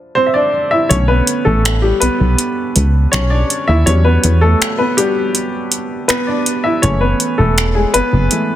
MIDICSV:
0, 0, Header, 1, 4, 480
1, 0, Start_track
1, 0, Key_signature, 2, "minor"
1, 0, Tempo, 740741
1, 586, Time_signature, 4, 2, 24, 8
1, 5545, End_track
2, 0, Start_track
2, 0, Title_t, "Grand piano"
2, 0, Program_c, 0, 0
2, 0, Control_c, 0, 64, 127
2, 0, Note_on_c, 0, 53, 72
2, 0, Note_on_c, 0, 62, 66
2, 0, Note_on_c, 0, 64, 70
2, 0, Note_on_c, 0, 72, 78
2, 88, Note_off_c, 0, 72, 0
2, 98, Note_on_c, 0, 72, 99
2, 112, Note_on_c, 0, 60, 76
2, 130, Note_off_c, 0, 72, 0
2, 144, Note_off_c, 0, 60, 0
2, 171, Note_on_c, 0, 76, 72
2, 219, Note_on_c, 0, 74, 92
2, 221, Note_off_c, 0, 76, 0
2, 222, Note_off_c, 0, 62, 0
2, 231, Note_on_c, 0, 62, 70
2, 308, Note_off_c, 0, 53, 0
2, 324, Note_off_c, 0, 64, 0
2, 452, Note_off_c, 0, 62, 0
2, 459, Note_on_c, 0, 76, 95
2, 470, Note_off_c, 0, 74, 0
2, 472, Note_on_c, 0, 64, 73
2, 579, Note_on_c, 0, 73, 104
2, 581, Note_off_c, 0, 64, 0
2, 583, Note_on_c, 0, 50, 52
2, 586, Note_off_c, 0, 76, 0
2, 587, Note_on_c, 0, 57, 52
2, 591, Note_on_c, 0, 61, 82
2, 593, Control_c, 0, 64, 0
2, 700, Note_on_c, 0, 71, 89
2, 701, Note_off_c, 0, 61, 0
2, 701, Control_c, 0, 64, 127
2, 706, Note_off_c, 0, 73, 0
2, 713, Note_on_c, 0, 59, 68
2, 933, Note_off_c, 0, 59, 0
2, 939, Note_on_c, 0, 69, 89
2, 943, Note_off_c, 0, 57, 0
2, 950, Note_off_c, 0, 71, 0
2, 952, Note_on_c, 0, 57, 69
2, 1173, Note_off_c, 0, 57, 0
2, 1179, Note_on_c, 0, 67, 82
2, 1190, Note_off_c, 0, 69, 0
2, 1192, Note_on_c, 0, 55, 60
2, 1278, Note_off_c, 0, 50, 0
2, 1298, Note_on_c, 0, 71, 96
2, 1301, Note_off_c, 0, 55, 0
2, 1306, Note_off_c, 0, 67, 0
2, 1311, Note_on_c, 0, 59, 78
2, 2003, Note_off_c, 0, 59, 0
2, 2019, Note_on_c, 0, 73, 103
2, 2032, Note_on_c, 0, 61, 79
2, 2044, Note_off_c, 0, 71, 0
2, 2140, Note_on_c, 0, 74, 91
2, 2141, Note_off_c, 0, 61, 0
2, 2146, Note_off_c, 0, 73, 0
2, 2152, Note_on_c, 0, 62, 68
2, 2372, Note_off_c, 0, 62, 0
2, 2382, Note_on_c, 0, 76, 99
2, 2390, Note_off_c, 0, 74, 0
2, 2393, Note_on_c, 0, 64, 76
2, 2501, Note_off_c, 0, 64, 0
2, 2501, Note_on_c, 0, 73, 105
2, 2504, Note_on_c, 0, 54, 56
2, 2507, Note_off_c, 0, 76, 0
2, 2508, Note_on_c, 0, 55, 49
2, 2512, Note_on_c, 0, 62, 58
2, 2513, Note_on_c, 0, 61, 81
2, 2514, Control_c, 0, 64, 0
2, 2621, Note_off_c, 0, 61, 0
2, 2622, Note_on_c, 0, 71, 87
2, 2627, Note_off_c, 0, 73, 0
2, 2633, Control_c, 0, 64, 127
2, 2634, Note_on_c, 0, 59, 69
2, 2853, Note_off_c, 0, 59, 0
2, 2860, Note_on_c, 0, 69, 90
2, 2871, Note_off_c, 0, 71, 0
2, 2872, Note_on_c, 0, 57, 65
2, 3092, Note_off_c, 0, 57, 0
2, 3100, Note_on_c, 0, 71, 87
2, 3110, Note_off_c, 0, 69, 0
2, 3112, Note_on_c, 0, 59, 66
2, 3199, Note_off_c, 0, 54, 0
2, 3201, Note_off_c, 0, 55, 0
2, 3203, Note_off_c, 0, 62, 0
2, 3215, Note_off_c, 0, 71, 0
2, 3221, Note_off_c, 0, 59, 0
2, 3221, Note_on_c, 0, 67, 98
2, 3226, Note_on_c, 0, 66, 49
2, 3228, Note_on_c, 0, 55, 75
2, 3231, Note_on_c, 0, 62, 55
2, 3442, Note_off_c, 0, 66, 0
2, 3445, Note_off_c, 0, 62, 0
2, 3924, Note_off_c, 0, 55, 0
2, 3941, Note_on_c, 0, 71, 92
2, 3953, Note_on_c, 0, 59, 74
2, 3965, Note_off_c, 0, 67, 0
2, 4055, Note_off_c, 0, 71, 0
2, 4061, Note_off_c, 0, 59, 0
2, 4062, Note_on_c, 0, 74, 89
2, 4073, Note_on_c, 0, 62, 74
2, 4293, Note_off_c, 0, 62, 0
2, 4301, Note_on_c, 0, 76, 92
2, 4311, Note_off_c, 0, 74, 0
2, 4312, Note_on_c, 0, 64, 78
2, 4421, Note_off_c, 0, 64, 0
2, 4421, Note_on_c, 0, 73, 105
2, 4423, Note_on_c, 0, 52, 56
2, 4427, Note_off_c, 0, 76, 0
2, 4427, Note_on_c, 0, 68, 54
2, 4431, Note_on_c, 0, 57, 61
2, 4432, Note_on_c, 0, 61, 80
2, 4435, Control_c, 0, 64, 0
2, 4541, Note_off_c, 0, 61, 0
2, 4541, Note_on_c, 0, 71, 87
2, 4547, Note_off_c, 0, 73, 0
2, 4552, Control_c, 0, 64, 127
2, 4553, Note_on_c, 0, 59, 68
2, 4773, Note_off_c, 0, 59, 0
2, 4782, Note_off_c, 0, 57, 0
2, 4782, Note_on_c, 0, 69, 87
2, 4791, Note_off_c, 0, 71, 0
2, 4792, Note_on_c, 0, 57, 68
2, 5007, Note_off_c, 0, 69, 0
2, 5012, Note_off_c, 0, 68, 0
2, 5013, Note_off_c, 0, 57, 0
2, 5021, Note_on_c, 0, 68, 78
2, 5033, Note_on_c, 0, 56, 63
2, 5118, Note_off_c, 0, 52, 0
2, 5135, Note_off_c, 0, 68, 0
2, 5141, Note_off_c, 0, 56, 0
2, 5143, Note_on_c, 0, 71, 114
2, 5154, Note_on_c, 0, 59, 80
2, 5386, Note_on_c, 0, 52, 47
2, 5389, Note_on_c, 0, 56, 45
2, 5392, Note_on_c, 0, 57, 55
2, 5545, Note_off_c, 0, 52, 0
2, 5545, Note_off_c, 0, 56, 0
2, 5545, Note_off_c, 0, 57, 0
2, 5545, Note_off_c, 0, 59, 0
2, 5545, Note_off_c, 0, 71, 0
2, 5545, End_track
3, 0, Start_track
3, 0, Title_t, "FM bass"
3, 0, Program_c, 1, 39
3, 586, Note_on_c, 1, 35, 103
3, 788, Note_off_c, 1, 35, 0
3, 947, Note_on_c, 1, 33, 90
3, 1249, Note_off_c, 1, 33, 0
3, 1309, Note_on_c, 1, 35, 49
3, 1356, Note_off_c, 1, 35, 0
3, 1429, Note_on_c, 1, 35, 87
3, 1529, Note_off_c, 1, 35, 0
3, 1789, Note_on_c, 1, 37, 91
3, 1990, Note_off_c, 1, 37, 0
3, 2029, Note_on_c, 1, 35, 91
3, 2230, Note_off_c, 1, 35, 0
3, 2389, Note_on_c, 1, 39, 86
3, 2489, Note_off_c, 1, 39, 0
3, 2508, Note_on_c, 1, 40, 103
3, 2709, Note_off_c, 1, 40, 0
3, 2748, Note_on_c, 1, 40, 102
3, 2950, Note_off_c, 1, 40, 0
3, 4428, Note_on_c, 1, 30, 104
3, 4629, Note_off_c, 1, 30, 0
3, 4789, Note_on_c, 1, 28, 94
3, 5090, Note_off_c, 1, 28, 0
3, 5149, Note_on_c, 1, 30, 48
3, 5196, Note_off_c, 1, 30, 0
3, 5268, Note_on_c, 1, 30, 93
3, 5368, Note_off_c, 1, 30, 0
3, 5545, End_track
4, 0, Start_track
4, 0, Title_t, "Drums"
4, 587, Note_on_c, 9, 42, 66
4, 652, Note_off_c, 9, 42, 0
4, 825, Note_on_c, 9, 42, 67
4, 890, Note_off_c, 9, 42, 0
4, 1071, Note_on_c, 9, 42, 66
4, 1074, Note_on_c, 9, 26, 103
4, 1136, Note_off_c, 9, 42, 0
4, 1139, Note_off_c, 9, 26, 0
4, 1306, Note_on_c, 9, 42, 74
4, 1371, Note_off_c, 9, 42, 0
4, 1545, Note_on_c, 9, 42, 69
4, 1610, Note_off_c, 9, 42, 0
4, 1786, Note_on_c, 9, 42, 66
4, 1851, Note_off_c, 9, 42, 0
4, 2027, Note_on_c, 9, 42, 59
4, 2036, Note_on_c, 9, 26, 107
4, 2092, Note_off_c, 9, 42, 0
4, 2100, Note_off_c, 9, 26, 0
4, 2269, Note_on_c, 9, 42, 64
4, 2334, Note_off_c, 9, 42, 0
4, 2507, Note_on_c, 9, 42, 65
4, 2572, Note_off_c, 9, 42, 0
4, 2744, Note_on_c, 9, 42, 67
4, 2809, Note_off_c, 9, 42, 0
4, 2991, Note_on_c, 9, 42, 70
4, 2994, Note_on_c, 9, 26, 105
4, 3056, Note_off_c, 9, 42, 0
4, 3058, Note_off_c, 9, 26, 0
4, 3226, Note_on_c, 9, 42, 77
4, 3291, Note_off_c, 9, 42, 0
4, 3465, Note_on_c, 9, 42, 63
4, 3530, Note_off_c, 9, 42, 0
4, 3704, Note_on_c, 9, 42, 67
4, 3769, Note_off_c, 9, 42, 0
4, 3945, Note_on_c, 9, 42, 65
4, 3953, Note_on_c, 9, 26, 109
4, 4010, Note_off_c, 9, 42, 0
4, 4018, Note_off_c, 9, 26, 0
4, 4188, Note_on_c, 9, 42, 62
4, 4253, Note_off_c, 9, 42, 0
4, 4426, Note_on_c, 9, 42, 69
4, 4491, Note_off_c, 9, 42, 0
4, 4665, Note_on_c, 9, 42, 64
4, 4730, Note_off_c, 9, 42, 0
4, 4910, Note_on_c, 9, 42, 68
4, 4912, Note_on_c, 9, 26, 109
4, 4974, Note_off_c, 9, 42, 0
4, 4977, Note_off_c, 9, 26, 0
4, 5146, Note_on_c, 9, 42, 79
4, 5211, Note_off_c, 9, 42, 0
4, 5383, Note_on_c, 9, 42, 64
4, 5448, Note_off_c, 9, 42, 0
4, 5545, End_track
0, 0, End_of_file